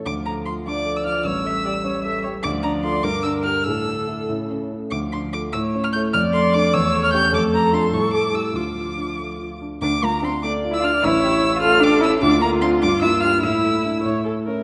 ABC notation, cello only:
X:1
M:6/8
L:1/16
Q:3/8=99
K:Dm
V:1 name="Cello"
F,6 F,6 | G,12 | F,6 D,6 | D,6 ^C,4 z2 |
F,6 A,6- | A,6 A,6 | A,6 G,6 | F,8- F,2 z2 |
D2 B,2 C2 D3 E F2 | E6 F2 D2 E2 | D2 B,2 C2 D2 E2 F2 | E6 z6 |]